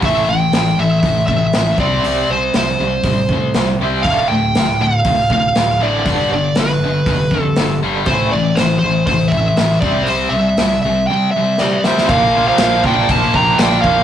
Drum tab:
CC |----------------|----------------|----------------|----------------|
HH |o---o---o---o---|o---o---o---o---|o---o---o---o---|o---o---o---o---|
SD |----o-------o---|----o-------o---|----o-------o---|----o-------o---|
BD |o-------o-o---o-|--------o-o-----|o-------o-o-----|o-------o-o-----|

CC |----------------|----------------|x---x---x---x---|
HH |o---o---o---o---|o---o-----------|----------------|
SD |----o-------o---|----o-------o-oo|----o-------o---|
BD |o-------o-o---o-|----------------|o-----o-o-o---o-|